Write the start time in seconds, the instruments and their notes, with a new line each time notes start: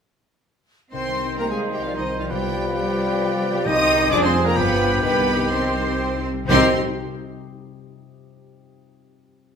0.92 double bass section C2, harp C3, bassoon D#3, cello section C4, french horn section C4, violin section C4 D#4 C6, clarinet C5, viola section C5, oboe C5, flute section G5
1.08 harp G3
1.24 harp D#4
1.38 cello section A#3, french horn section A#3, harp G4, clarinet A#4, viola section A#4, flute section G5, violin section A#5
1.50 french horn section G#3, cello section G#3, clarinet G#4, viola section G#4, flute section F5, violin section G#5
1.55 harp C5
1.70 french horn section G3, cello section G3, clarinet G4, viola section G4, harp D#5, flute section D#5, violin section G5
1.83 cello section F3, french horn section F3, viola section F4, clarinet F4, harp C5, flute section D5, violin section F5
1.95 cello section D#3, french horn section D#3, viola section D#4, clarinet D#4, flute section C5, violin section D#5
2.00 harp D#4
2.16 cello section F3, harp G3, viola section F4, clarinet F4, flute section D5, violin section F5
2.20 french horn section F3
2.30 harp C3, bassoon F3, french horn section G3, cello section G3, violin section B3 F4 G5, viola section G4, clarinet G4, oboe B4, flute section D5
2.46 harp G3
2.62 harp F4
2.75 french horn section G3, cello section G3, viola section G4, clarinet G4, harp G4, flute section D5, violin section G5
2.91 harp B4
3.06 harp F5
3.21 harp B4
3.36 harp F4
3.52 harp G3
3.65 double bass section C2, timpani C3, harp C3, bassoon D#3, violin section C4 G4 D#6, french horn section D#4, cello section D#4, oboe G4, clarinet D#5, viola section D#5, flute section C6
3.82 harp D#4
3.98 harp G4 C5
4.10 double bass section F1, harp F2, bassoon F3, french horn section D4, cello section D4, violin section D4 G#4 D6, oboe G#4, clarinet D5, viola section D5, flute section G#5
4.22 cello section C4, french horn section C4, clarinet C5, viola section C5, flute section G#5, violin section C6
4.27 harp F4
4.41 french horn section A#3, harp G#4 D5, viola section A#4, clarinet A#4
4.46 cello section A#3, flute section G5, violin section A#5
4.56 double bass section G1, harp G2, french horn section B3, cello section B3, violin section F4 G4 B5, oboe G4, clarinet B4, viola section B4, flute section G5
4.73 harp F4
4.88 harp G4 D5
5.03 double bass section C2, harp C3, bassoon D#3, cello section B3, french horn section B3, violin section D#4 B5, clarinet B4, viola section B4, flute section G5
5.20 harp G3
5.36 harp D#4
5.51 cello section C4, french horn section C4, clarinet C5, viola section C5, flute section G5, violin section C6
5.69 harp D#5
5.85 harp G4
6.01 harp D#5
6.17 harp D#4
6.33 harp G3
6.44 harp C3 C4, clarinet C5
6.48 double bass section C2, timpani C3, bassoon D#3, viola section C4, cello section C4, french horn section C4, harp D#4 G4, violin section D#4 G4 C6, oboe G4, flute section C5
6.53 harp D#5 G5